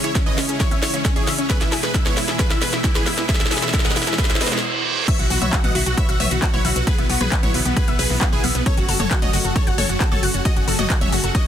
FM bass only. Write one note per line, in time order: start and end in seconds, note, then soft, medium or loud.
5.19 5.27 B1 medium
5.30 5.38 B1 loud
5.42 5.49 B1 medium
5.64 5.71 A1 medium
5.75 5.83 B1 loud
5.86 5.94 B1 loud
6.09 6.16 B1 medium
6.20 6.27 B1 medium
6.31 6.39 B1 medium
6.53 6.61 B1 medium
6.65 6.72 B1 medium
6.76 6.83 B1 medium
6.98 7.06 B1 medium
7.09 7.17 B1 loud
7.21 7.28 B1 medium
7.43 7.51 A1 medium
7.54 7.62 B1 loud
7.65 7.73 B1 loud
7.88 7.95 B1 medium
7.99 8.06 B1 loud
8.10 8.18 B1 medium
8.33 8.40 B1 medium
8.44 8.51 B1 loud
8.55 8.62 B1 medium
8.77 8.85 F#1 medium
8.89 8.96 F#1 loud
9.00 9.07 F#1 medium
9.22 9.30 E1 medium
9.33 9.41 F#1 loud
9.44 9.52 F#1 loud
9.67 9.74 F#1 medium
9.78 9.86 F#1 loud
9.89 9.97 F#1 medium
10.12 10.19 F#1 medium
10.23 10.30 F#1 loud
10.34 10.41 F#1 medium
10.56 10.64 F#1 medium
10.68 10.75 F#1 loud
10.79 10.86 F#1 medium
11.01 11.09 E1 medium
11.12 11.20 F#1 loud
11.24 11.31 F#1 medium